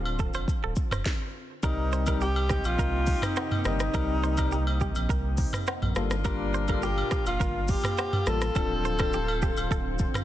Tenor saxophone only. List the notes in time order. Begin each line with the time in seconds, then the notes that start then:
1.65 D#4
2.22 G4
2.66 F4
3.24 D#4
3.67 D#4
6.26 D4
6.84 G4
7.28 F4
7.70 G4
8.28 A4